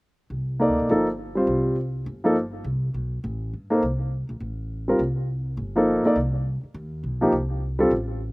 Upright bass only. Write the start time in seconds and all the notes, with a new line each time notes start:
0.30 C2
0.69 D2
0.79 B1
0.89 G1
1.47 C2
2.06 G1
2.64 C2
2.94 B1
3.24 A1
3.53 G2
3.82 C2
4.29 A#1
4.40 A1
4.99 C2
5.57 G1
6.05 muted upright bass stroke
6.16 C2
6.63 muted upright bass stroke
6.74 D#2
7.04 B1
7.32 C2
7.91 A1